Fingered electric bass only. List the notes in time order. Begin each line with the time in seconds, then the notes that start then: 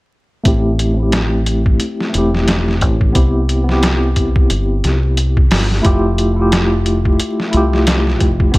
0.46 A1
2.15 E1
2.82 A1
3.16 C2
4.51 G1
4.84 C2
5.52 G1
5.85 F1
7.54 C2
8.21 F1
8.54 G1